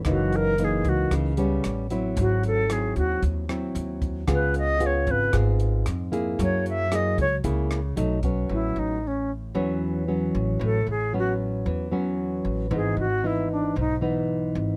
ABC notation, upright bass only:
X:1
M:4/4
L:1/8
Q:1/4=114
K:Alyd
V:1 name="Upright bass" clef=bass
F,,,3 C,, C,,2 A,,,2 | G,,,3 D,, D,,2 D,,2 | C,,3 G,,, G,,,2 ^E,,2 | F,,3 C,, C,,2 B,,,2 |
A,,, A,,,3 E,,3 A,,, | A,,, A,,,3 E,,3 A,,, | G,,, G,,,3 B,,,3 G,,, |]